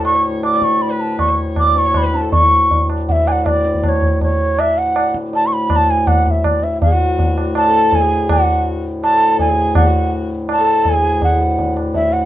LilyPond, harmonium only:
\new Staff \with { instrumentName = "Harmonium" } { \clef bass \time 3/4 \tempo 4 = 162 <d, a,>2.~ | <d, a,>2. | <d, a,>2.~ | <d, a,>2.~ |
<d, a,>2.~ | <d, a,>2. | <d, a,>2.~ | <d, a,>2.~ |
<d, a,>2.~ | <d, a,>2. | <d, a,>2. | }